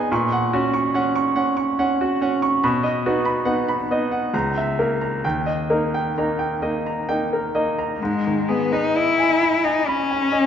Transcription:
Already playing: B3 D#4 G#4 D#5 G#5 B5
0.12 A#2 C#6
0.32 F#5
0.53 C#4 F#4
0.74 C#6
0.94 C#4 F#5
1.15 C#6
1.36 C#4 F#5
1.57 C#6
1.79 C#4 F#5
2.01 F#4
2.21 C#4 F#5
2.42 C#6
2.64 B2 B5
2.83 D#5
3.06 B3 D#4 F#4
3.25 B5
3.45 B3 D#4 F#5
3.68 B5
3.91 B3 D#4 D#5
4.11 F#5
4.34 C#2 A#5
4.58 E5
4.79 A#3 A#4
5.01 A#5
5.24 D#2 G5
5.46 D#5
5.70 A#3 D#4 A#4
5.94 G5
6.18 A#3 D#4 A#5
6.39 G5
6.62 A#3 D#4 D#5
6.86 A#5
7.09 A#3 D#4 G5
7.33 A#4
7.55 A#3 D#4 D#5
7.79 A#5
8.00 G#2 G#3
8.27 D#3
8.48 B3 G#4
8.72 D#4 B4
8.96 E4 D#5
9.18 G#5
9.42 B5
9.65 D#4 G#5
9.87 C#4 B5
10.11 G#5
10.32 D#5

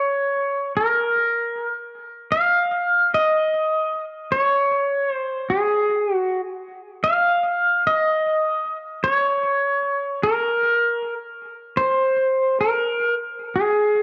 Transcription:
Already playing: C#5
0.77 A#4
2.32 F5
3.14 D#5
4.32 C#5
5.12 C5
5.50 G#4
6.15 F#4
7.04 F5
7.87 D#5
9.04 C#5
10.24 A#4
11.77 C5
12.60 A#4
13.56 G#4

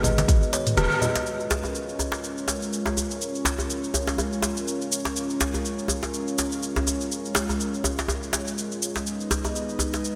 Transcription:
Already playing: G#1 D#3 G#3 B3 F#4 B4
0.03 D#5, closed hi-hat, djembe tone, low conga, shaker
0.18 closed hi-hat, djembe slap, high conga, shaker
0.28 F#4, kick, closed hi-hat, high conga, djembe tone, shaker
0.43 shaker
0.53 C#5, closed hi-hat, djembe slap, shaker
0.67 closed hi-hat, mid tom, shaker
0.77 D#1 B4, cross-stick, closed hi-hat, high conga, shaker
0.92 shaker
1.02 D#5, low conga, shaker
1.16 closed hi-hat, djembe slap, shaker
1.26 G#3 C#4 F4 A#4 C#5, shaker
1.40 shaker
1.51 djembe slap, djembe tone, shaker
1.64 djembe tone, shaker
1.75 shaker
1.89 shaker
1.99 djembe tone, shaker
2.12 djembe slap, shaker
2.24 shaker
2.38 shaker
2.48 djembe slap, shaker
2.62 shaker
2.73 shaker
2.86 djembe slap, djembe tone, shaker
2.97 djembe tone, shaker
3.11 shaker
3.22 shaker
3.35 shaker
3.45 djembe slap, djembe tone, shaker
3.59 djembe tone, shaker
3.70 shaker
3.84 shaker
3.94 djembe tone, shaker
4.07 djembe slap, shaker
4.18 djembe tone, shaker
4.33 shaker
4.42 djembe slap, shaker
4.57 shaker
4.68 shaker
4.82 shaker
4.92 shaker
5.05 djembe slap, shaker
5.16 shaker
5.30 shaker
5.41 djembe slap, djembe tone, shaker
5.54 djembe tone, shaker
5.65 shaker
5.79 shaker
5.88 djembe tone, shaker
6.03 djembe slap, shaker
6.14 shaker
6.28 shaker
6.38 djembe slap, shaker
6.52 shaker
6.63 shaker
6.76 djembe slap, djembe tone, shaker
6.87 djembe tone, shaker
7.01 shaker
7.12 shaker
7.25 shaker
7.35 djembe slap, djembe tone, shaker
7.49 djembe tone, shaker
7.60 shaker
7.74 shaker
7.84 djembe tone, shaker
7.99 djembe slap, shaker
8.08 djembe tone, shaker
8.23 shaker
8.33 djembe slap, shaker
8.48 shaker
8.58 shaker
8.72 shaker
8.82 shaker
8.96 djembe slap, shaker
9.06 B3 D#4 B4 D#5, shaker
9.21 shaker
9.31 djembe slap, djembe tone, shaker
9.45 djembe tone, shaker
9.56 shaker
9.69 shaker
9.79 djembe tone, shaker
9.94 djembe slap, shaker
10.04 shaker

